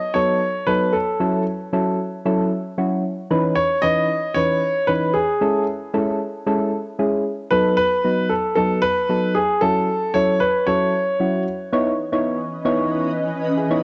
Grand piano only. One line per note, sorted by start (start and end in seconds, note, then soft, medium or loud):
0.00 0.16 D#5 loud
0.14 0.69 C#5 medium
0.67 0.94 B4 medium
0.93 1.42 A4 medium
3.56 3.84 C#5 medium
3.82 4.37 D#5 loud
4.35 4.90 C#5 loud
4.87 5.15 B4 medium
5.14 5.63 G#4 medium
7.50 7.75 B4 medium
7.77 8.32 B4 loud
8.29 8.54 A4 medium
8.55 8.83 A4 medium
8.82 9.37 B4 loud
9.35 9.63 G#4 medium
9.61 10.16 A4 loud
10.14 10.42 C#5 loud
10.40 10.65 B4 medium
10.67 11.42 C#5 medium